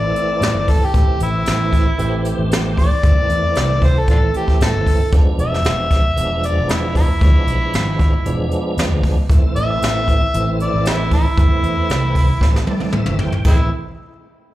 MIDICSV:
0, 0, Header, 1, 6, 480
1, 0, Start_track
1, 0, Key_signature, 0, "minor"
1, 0, Tempo, 521286
1, 869, Time_signature, 4, 2, 24, 8
1, 13389, End_track
2, 0, Start_track
2, 0, Title_t, "Harmonica"
2, 0, Program_c, 0, 22
2, 0, Note_on_c, 0, 74, 96
2, 654, Note_on_c, 0, 69, 82
2, 667, Note_off_c, 0, 74, 0
2, 779, Note_on_c, 0, 67, 91
2, 793, Note_off_c, 0, 69, 0
2, 1112, Note_off_c, 0, 67, 0
2, 1131, Note_on_c, 0, 64, 96
2, 2055, Note_off_c, 0, 64, 0
2, 2566, Note_on_c, 0, 74, 107
2, 3541, Note_on_c, 0, 72, 91
2, 3554, Note_off_c, 0, 74, 0
2, 3673, Note_on_c, 0, 69, 89
2, 3687, Note_off_c, 0, 72, 0
2, 3766, Note_off_c, 0, 69, 0
2, 3775, Note_on_c, 0, 62, 54
2, 3775, Note_on_c, 0, 65, 54
2, 3775, Note_on_c, 0, 69, 77
2, 3835, Note_off_c, 0, 65, 0
2, 3849, Note_off_c, 0, 62, 0
2, 4000, Note_off_c, 0, 69, 0
2, 4017, Note_on_c, 0, 67, 72
2, 4242, Note_off_c, 0, 67, 0
2, 4265, Note_on_c, 0, 69, 93
2, 4719, Note_off_c, 0, 69, 0
2, 4980, Note_on_c, 0, 76, 94
2, 5944, Note_on_c, 0, 74, 80
2, 5958, Note_off_c, 0, 76, 0
2, 6176, Note_on_c, 0, 64, 84
2, 6190, Note_off_c, 0, 74, 0
2, 6402, Note_off_c, 0, 64, 0
2, 6416, Note_on_c, 0, 64, 87
2, 7810, Note_off_c, 0, 64, 0
2, 8813, Note_on_c, 0, 76, 112
2, 9733, Note_off_c, 0, 76, 0
2, 9776, Note_on_c, 0, 74, 85
2, 9997, Note_off_c, 0, 74, 0
2, 10017, Note_on_c, 0, 56, 63
2, 10017, Note_on_c, 0, 60, 63
2, 10017, Note_on_c, 0, 64, 90
2, 10074, Note_off_c, 0, 60, 0
2, 10075, Note_off_c, 0, 56, 0
2, 10237, Note_off_c, 0, 64, 0
2, 10252, Note_on_c, 0, 64, 110
2, 11640, Note_off_c, 0, 64, 0
2, 12403, Note_on_c, 0, 56, 53
2, 12403, Note_on_c, 0, 60, 53
2, 12403, Note_on_c, 0, 64, 76
2, 12465, Note_off_c, 0, 56, 0
2, 12476, Note_off_c, 0, 60, 0
2, 12617, Note_off_c, 0, 64, 0
2, 13389, End_track
3, 0, Start_track
3, 0, Title_t, "Tonewheel organ"
3, 0, Program_c, 1, 16
3, 0, Note_on_c, 1, 52, 82
3, 0, Note_on_c, 1, 57, 75
3, 0, Note_on_c, 1, 60, 67
3, 0, Note_on_c, 1, 64, 81
3, 765, Note_off_c, 1, 57, 0
3, 766, Note_off_c, 1, 52, 0
3, 766, Note_off_c, 1, 60, 0
3, 766, Note_off_c, 1, 64, 0
3, 864, Note_on_c, 1, 52, 65
3, 868, Note_on_c, 1, 60, 58
3, 870, Note_on_c, 1, 57, 61
3, 873, Note_on_c, 1, 64, 75
3, 1721, Note_off_c, 1, 52, 0
3, 1723, Note_off_c, 1, 60, 0
3, 1724, Note_off_c, 1, 57, 0
3, 1725, Note_off_c, 1, 64, 0
3, 1824, Note_on_c, 1, 52, 96
3, 1826, Note_on_c, 1, 57, 79
3, 1831, Note_on_c, 1, 67, 102
3, 1832, Note_on_c, 1, 60, 89
3, 2682, Note_off_c, 1, 52, 0
3, 2684, Note_off_c, 1, 57, 0
3, 2686, Note_off_c, 1, 67, 0
3, 2687, Note_off_c, 1, 60, 0
3, 2795, Note_on_c, 1, 52, 66
3, 2803, Note_on_c, 1, 57, 65
3, 2804, Note_on_c, 1, 60, 63
3, 2806, Note_on_c, 1, 64, 69
3, 3649, Note_off_c, 1, 52, 0
3, 3653, Note_off_c, 1, 57, 0
3, 3654, Note_off_c, 1, 60, 0
3, 3655, Note_off_c, 1, 64, 0
3, 3760, Note_on_c, 1, 52, 80
3, 3761, Note_on_c, 1, 64, 82
3, 3764, Note_on_c, 1, 57, 67
3, 3764, Note_on_c, 1, 60, 75
3, 4613, Note_off_c, 1, 52, 0
3, 4613, Note_off_c, 1, 64, 0
3, 4615, Note_off_c, 1, 57, 0
3, 4615, Note_off_c, 1, 60, 0
3, 4727, Note_on_c, 1, 53, 67
3, 4727, Note_on_c, 1, 62, 78
3, 4728, Note_on_c, 1, 56, 68
3, 4729, Note_on_c, 1, 59, 59
3, 5576, Note_off_c, 1, 53, 0
3, 5576, Note_off_c, 1, 62, 0
3, 5577, Note_off_c, 1, 56, 0
3, 5577, Note_off_c, 1, 59, 0
3, 5672, Note_on_c, 1, 53, 89
3, 5676, Note_on_c, 1, 56, 79
3, 5679, Note_on_c, 1, 59, 82
3, 5679, Note_on_c, 1, 62, 93
3, 6528, Note_off_c, 1, 53, 0
3, 6530, Note_off_c, 1, 56, 0
3, 6532, Note_off_c, 1, 59, 0
3, 6532, Note_off_c, 1, 62, 0
3, 6645, Note_on_c, 1, 53, 65
3, 6645, Note_on_c, 1, 62, 71
3, 6646, Note_on_c, 1, 56, 65
3, 6647, Note_on_c, 1, 59, 57
3, 7493, Note_off_c, 1, 53, 0
3, 7494, Note_off_c, 1, 56, 0
3, 7494, Note_off_c, 1, 62, 0
3, 7495, Note_off_c, 1, 59, 0
3, 7604, Note_on_c, 1, 53, 91
3, 7607, Note_on_c, 1, 62, 98
3, 7608, Note_on_c, 1, 59, 86
3, 7609, Note_on_c, 1, 56, 80
3, 8451, Note_off_c, 1, 53, 0
3, 8453, Note_off_c, 1, 62, 0
3, 8454, Note_off_c, 1, 56, 0
3, 8454, Note_off_c, 1, 59, 0
3, 8562, Note_on_c, 1, 57, 78
3, 8563, Note_on_c, 1, 52, 91
3, 8567, Note_on_c, 1, 64, 90
3, 8568, Note_on_c, 1, 60, 75
3, 9409, Note_off_c, 1, 52, 0
3, 9409, Note_off_c, 1, 57, 0
3, 9411, Note_off_c, 1, 64, 0
3, 9412, Note_off_c, 1, 60, 0
3, 9518, Note_on_c, 1, 57, 84
3, 9522, Note_on_c, 1, 52, 85
3, 9527, Note_on_c, 1, 60, 87
3, 9528, Note_on_c, 1, 64, 108
3, 10365, Note_off_c, 1, 57, 0
3, 10367, Note_off_c, 1, 52, 0
3, 10369, Note_off_c, 1, 60, 0
3, 10370, Note_off_c, 1, 64, 0
3, 10473, Note_on_c, 1, 60, 61
3, 10474, Note_on_c, 1, 57, 64
3, 10475, Note_on_c, 1, 52, 74
3, 10475, Note_on_c, 1, 64, 73
3, 11321, Note_off_c, 1, 52, 0
3, 11321, Note_off_c, 1, 57, 0
3, 11321, Note_off_c, 1, 60, 0
3, 11322, Note_off_c, 1, 64, 0
3, 11428, Note_on_c, 1, 52, 88
3, 11429, Note_on_c, 1, 57, 84
3, 11431, Note_on_c, 1, 60, 84
3, 11433, Note_on_c, 1, 64, 97
3, 11672, Note_on_c, 1, 74, 73
3, 11892, Note_off_c, 1, 74, 0
3, 11918, Note_on_c, 1, 76, 68
3, 12135, Note_off_c, 1, 76, 0
3, 12161, Note_on_c, 1, 79, 61
3, 12276, Note_off_c, 1, 52, 0
3, 12277, Note_off_c, 1, 57, 0
3, 12278, Note_off_c, 1, 60, 0
3, 12279, Note_off_c, 1, 64, 0
3, 12376, Note_off_c, 1, 79, 0
3, 12390, Note_on_c, 1, 52, 77
3, 12391, Note_on_c, 1, 57, 68
3, 12393, Note_on_c, 1, 60, 71
3, 12396, Note_on_c, 1, 64, 76
3, 12610, Note_off_c, 1, 52, 0
3, 12611, Note_off_c, 1, 57, 0
3, 12612, Note_off_c, 1, 60, 0
3, 12613, Note_off_c, 1, 64, 0
3, 13389, End_track
4, 0, Start_track
4, 0, Title_t, "Fingered electric bass"
4, 0, Program_c, 2, 33
4, 0, Note_on_c, 2, 33, 94
4, 100, Note_off_c, 2, 33, 0
4, 378, Note_on_c, 2, 45, 82
4, 485, Note_off_c, 2, 45, 0
4, 506, Note_on_c, 2, 31, 79
4, 705, Note_off_c, 2, 31, 0
4, 868, Note_on_c, 2, 33, 102
4, 971, Note_off_c, 2, 33, 0
4, 1116, Note_on_c, 2, 33, 102
4, 1309, Note_off_c, 2, 33, 0
4, 1361, Note_on_c, 2, 33, 96
4, 1749, Note_off_c, 2, 33, 0
4, 1832, Note_on_c, 2, 33, 88
4, 2131, Note_off_c, 2, 33, 0
4, 2200, Note_on_c, 2, 33, 95
4, 2684, Note_off_c, 2, 33, 0
4, 2796, Note_on_c, 2, 31, 99
4, 2899, Note_off_c, 2, 31, 0
4, 3036, Note_on_c, 2, 40, 80
4, 3139, Note_off_c, 2, 40, 0
4, 3287, Note_on_c, 2, 36, 99
4, 3675, Note_off_c, 2, 36, 0
4, 3759, Note_on_c, 2, 33, 91
4, 3954, Note_off_c, 2, 33, 0
4, 4245, Note_on_c, 2, 45, 77
4, 4345, Note_off_c, 2, 45, 0
4, 4369, Note_on_c, 2, 31, 79
4, 4563, Note_off_c, 2, 31, 0
4, 4718, Note_on_c, 2, 28, 94
4, 4822, Note_off_c, 2, 28, 0
4, 4958, Note_on_c, 2, 28, 93
4, 5154, Note_off_c, 2, 28, 0
4, 5202, Note_on_c, 2, 28, 85
4, 5592, Note_off_c, 2, 28, 0
4, 5683, Note_on_c, 2, 28, 97
4, 5980, Note_off_c, 2, 28, 0
4, 6048, Note_on_c, 2, 28, 93
4, 6531, Note_off_c, 2, 28, 0
4, 6647, Note_on_c, 2, 38, 100
4, 6747, Note_off_c, 2, 38, 0
4, 6879, Note_on_c, 2, 35, 94
4, 6982, Note_off_c, 2, 35, 0
4, 7125, Note_on_c, 2, 32, 101
4, 7513, Note_off_c, 2, 32, 0
4, 7606, Note_on_c, 2, 28, 105
4, 7798, Note_off_c, 2, 28, 0
4, 8076, Note_on_c, 2, 40, 82
4, 8180, Note_off_c, 2, 40, 0
4, 8203, Note_on_c, 2, 38, 76
4, 8398, Note_off_c, 2, 38, 0
4, 8561, Note_on_c, 2, 33, 93
4, 8662, Note_off_c, 2, 33, 0
4, 8804, Note_on_c, 2, 33, 99
4, 8996, Note_off_c, 2, 33, 0
4, 9045, Note_on_c, 2, 33, 90
4, 9431, Note_off_c, 2, 33, 0
4, 9529, Note_on_c, 2, 33, 104
4, 9820, Note_off_c, 2, 33, 0
4, 9886, Note_on_c, 2, 33, 93
4, 10365, Note_off_c, 2, 33, 0
4, 10478, Note_on_c, 2, 31, 93
4, 10577, Note_off_c, 2, 31, 0
4, 10711, Note_on_c, 2, 40, 85
4, 10813, Note_off_c, 2, 40, 0
4, 10956, Note_on_c, 2, 36, 105
4, 11342, Note_off_c, 2, 36, 0
4, 11432, Note_on_c, 2, 33, 97
4, 11625, Note_off_c, 2, 33, 0
4, 11907, Note_on_c, 2, 45, 81
4, 12009, Note_off_c, 2, 45, 0
4, 12027, Note_on_c, 2, 31, 85
4, 12224, Note_off_c, 2, 31, 0
4, 12381, Note_on_c, 2, 33, 99
4, 12605, Note_off_c, 2, 33, 0
4, 13389, End_track
5, 0, Start_track
5, 0, Title_t, "Muted fingered electric bass strokes"
5, 997, Note_on_c, 9, 29, 33
5, 1089, Note_off_c, 9, 29, 0
5, 4850, Note_on_c, 9, 29, 34
5, 4942, Note_off_c, 9, 29, 0
5, 8687, Note_on_c, 9, 29, 36
5, 8779, Note_off_c, 9, 29, 0
5, 13389, End_track
6, 0, Start_track
6, 0, Title_t, "Drums"
6, 146, Note_on_c, 9, 42, 56
6, 238, Note_off_c, 9, 42, 0
6, 384, Note_on_c, 9, 42, 76
6, 397, Note_on_c, 9, 38, 104
6, 476, Note_off_c, 9, 42, 0
6, 489, Note_off_c, 9, 38, 0
6, 624, Note_on_c, 9, 46, 81
6, 627, Note_on_c, 9, 36, 71
6, 716, Note_off_c, 9, 46, 0
6, 719, Note_off_c, 9, 36, 0
6, 866, Note_on_c, 9, 42, 84
6, 867, Note_on_c, 9, 36, 93
6, 958, Note_off_c, 9, 42, 0
6, 959, Note_off_c, 9, 36, 0
6, 1106, Note_on_c, 9, 42, 64
6, 1198, Note_off_c, 9, 42, 0
6, 1345, Note_on_c, 9, 42, 79
6, 1359, Note_on_c, 9, 38, 89
6, 1437, Note_off_c, 9, 42, 0
6, 1451, Note_off_c, 9, 38, 0
6, 1590, Note_on_c, 9, 36, 65
6, 1594, Note_on_c, 9, 42, 56
6, 1682, Note_off_c, 9, 36, 0
6, 1686, Note_off_c, 9, 42, 0
6, 1832, Note_on_c, 9, 42, 73
6, 1924, Note_off_c, 9, 42, 0
6, 2072, Note_on_c, 9, 42, 62
6, 2164, Note_off_c, 9, 42, 0
6, 2316, Note_on_c, 9, 42, 83
6, 2330, Note_on_c, 9, 38, 110
6, 2408, Note_off_c, 9, 42, 0
6, 2422, Note_off_c, 9, 38, 0
6, 2555, Note_on_c, 9, 36, 73
6, 2562, Note_on_c, 9, 46, 69
6, 2647, Note_off_c, 9, 36, 0
6, 2654, Note_off_c, 9, 46, 0
6, 2793, Note_on_c, 9, 42, 72
6, 2794, Note_on_c, 9, 36, 100
6, 2885, Note_off_c, 9, 42, 0
6, 2886, Note_off_c, 9, 36, 0
6, 3035, Note_on_c, 9, 42, 55
6, 3127, Note_off_c, 9, 42, 0
6, 3271, Note_on_c, 9, 42, 75
6, 3285, Note_on_c, 9, 38, 93
6, 3363, Note_off_c, 9, 42, 0
6, 3377, Note_off_c, 9, 38, 0
6, 3516, Note_on_c, 9, 36, 73
6, 3518, Note_on_c, 9, 46, 61
6, 3608, Note_off_c, 9, 36, 0
6, 3610, Note_off_c, 9, 46, 0
6, 3755, Note_on_c, 9, 42, 71
6, 3757, Note_on_c, 9, 36, 79
6, 3847, Note_off_c, 9, 42, 0
6, 3849, Note_off_c, 9, 36, 0
6, 3998, Note_on_c, 9, 42, 58
6, 4090, Note_off_c, 9, 42, 0
6, 4125, Note_on_c, 9, 36, 61
6, 4217, Note_off_c, 9, 36, 0
6, 4241, Note_on_c, 9, 42, 72
6, 4255, Note_on_c, 9, 38, 95
6, 4334, Note_off_c, 9, 42, 0
6, 4347, Note_off_c, 9, 38, 0
6, 4480, Note_on_c, 9, 36, 65
6, 4482, Note_on_c, 9, 46, 74
6, 4572, Note_off_c, 9, 36, 0
6, 4574, Note_off_c, 9, 46, 0
6, 4717, Note_on_c, 9, 42, 77
6, 4720, Note_on_c, 9, 36, 102
6, 4809, Note_off_c, 9, 42, 0
6, 4812, Note_off_c, 9, 36, 0
6, 4961, Note_on_c, 9, 42, 59
6, 5053, Note_off_c, 9, 42, 0
6, 5103, Note_on_c, 9, 38, 33
6, 5195, Note_off_c, 9, 38, 0
6, 5197, Note_on_c, 9, 42, 76
6, 5210, Note_on_c, 9, 38, 108
6, 5289, Note_off_c, 9, 42, 0
6, 5302, Note_off_c, 9, 38, 0
6, 5440, Note_on_c, 9, 36, 68
6, 5440, Note_on_c, 9, 42, 62
6, 5454, Note_on_c, 9, 38, 31
6, 5532, Note_off_c, 9, 36, 0
6, 5532, Note_off_c, 9, 42, 0
6, 5546, Note_off_c, 9, 38, 0
6, 5683, Note_on_c, 9, 42, 84
6, 5775, Note_off_c, 9, 42, 0
6, 5925, Note_on_c, 9, 42, 68
6, 6017, Note_off_c, 9, 42, 0
6, 6161, Note_on_c, 9, 42, 81
6, 6174, Note_on_c, 9, 38, 117
6, 6253, Note_off_c, 9, 42, 0
6, 6266, Note_off_c, 9, 38, 0
6, 6402, Note_on_c, 9, 36, 69
6, 6403, Note_on_c, 9, 46, 78
6, 6494, Note_off_c, 9, 36, 0
6, 6495, Note_off_c, 9, 46, 0
6, 6642, Note_on_c, 9, 36, 104
6, 6643, Note_on_c, 9, 42, 74
6, 6734, Note_off_c, 9, 36, 0
6, 6735, Note_off_c, 9, 42, 0
6, 6882, Note_on_c, 9, 42, 62
6, 6974, Note_off_c, 9, 42, 0
6, 7123, Note_on_c, 9, 42, 71
6, 7137, Note_on_c, 9, 38, 95
6, 7215, Note_off_c, 9, 42, 0
6, 7229, Note_off_c, 9, 38, 0
6, 7361, Note_on_c, 9, 36, 74
6, 7366, Note_on_c, 9, 42, 55
6, 7453, Note_off_c, 9, 36, 0
6, 7458, Note_off_c, 9, 42, 0
6, 7602, Note_on_c, 9, 42, 74
6, 7694, Note_off_c, 9, 42, 0
6, 7839, Note_on_c, 9, 42, 53
6, 7931, Note_off_c, 9, 42, 0
6, 8081, Note_on_c, 9, 42, 77
6, 8095, Note_on_c, 9, 38, 107
6, 8173, Note_off_c, 9, 42, 0
6, 8187, Note_off_c, 9, 38, 0
6, 8319, Note_on_c, 9, 36, 78
6, 8320, Note_on_c, 9, 46, 74
6, 8411, Note_off_c, 9, 36, 0
6, 8412, Note_off_c, 9, 46, 0
6, 8559, Note_on_c, 9, 36, 101
6, 8560, Note_on_c, 9, 42, 76
6, 8651, Note_off_c, 9, 36, 0
6, 8652, Note_off_c, 9, 42, 0
6, 8801, Note_on_c, 9, 42, 54
6, 8893, Note_off_c, 9, 42, 0
6, 9045, Note_on_c, 9, 42, 77
6, 9059, Note_on_c, 9, 38, 98
6, 9137, Note_off_c, 9, 42, 0
6, 9151, Note_off_c, 9, 38, 0
6, 9280, Note_on_c, 9, 36, 64
6, 9285, Note_on_c, 9, 42, 60
6, 9372, Note_off_c, 9, 36, 0
6, 9377, Note_off_c, 9, 42, 0
6, 9523, Note_on_c, 9, 42, 84
6, 9615, Note_off_c, 9, 42, 0
6, 9762, Note_on_c, 9, 42, 62
6, 9854, Note_off_c, 9, 42, 0
6, 9996, Note_on_c, 9, 42, 81
6, 10010, Note_on_c, 9, 38, 109
6, 10088, Note_off_c, 9, 42, 0
6, 10102, Note_off_c, 9, 38, 0
6, 10232, Note_on_c, 9, 46, 70
6, 10234, Note_on_c, 9, 36, 70
6, 10324, Note_off_c, 9, 46, 0
6, 10326, Note_off_c, 9, 36, 0
6, 10474, Note_on_c, 9, 36, 98
6, 10477, Note_on_c, 9, 42, 83
6, 10566, Note_off_c, 9, 36, 0
6, 10569, Note_off_c, 9, 42, 0
6, 10714, Note_on_c, 9, 42, 65
6, 10806, Note_off_c, 9, 42, 0
6, 10953, Note_on_c, 9, 42, 73
6, 10967, Note_on_c, 9, 38, 87
6, 11045, Note_off_c, 9, 42, 0
6, 11059, Note_off_c, 9, 38, 0
6, 11190, Note_on_c, 9, 36, 66
6, 11190, Note_on_c, 9, 46, 70
6, 11282, Note_off_c, 9, 36, 0
6, 11282, Note_off_c, 9, 46, 0
6, 11429, Note_on_c, 9, 36, 74
6, 11441, Note_on_c, 9, 38, 54
6, 11521, Note_off_c, 9, 36, 0
6, 11533, Note_off_c, 9, 38, 0
6, 11566, Note_on_c, 9, 38, 56
6, 11658, Note_off_c, 9, 38, 0
6, 11667, Note_on_c, 9, 48, 69
6, 11759, Note_off_c, 9, 48, 0
6, 11788, Note_on_c, 9, 48, 62
6, 11880, Note_off_c, 9, 48, 0
6, 11901, Note_on_c, 9, 47, 84
6, 11993, Note_off_c, 9, 47, 0
6, 12024, Note_on_c, 9, 45, 65
6, 12116, Note_off_c, 9, 45, 0
6, 12143, Note_on_c, 9, 43, 81
6, 12235, Note_off_c, 9, 43, 0
6, 12267, Note_on_c, 9, 43, 69
6, 12359, Note_off_c, 9, 43, 0
6, 12380, Note_on_c, 9, 49, 77
6, 12384, Note_on_c, 9, 36, 96
6, 12472, Note_off_c, 9, 49, 0
6, 12476, Note_off_c, 9, 36, 0
6, 13389, End_track
0, 0, End_of_file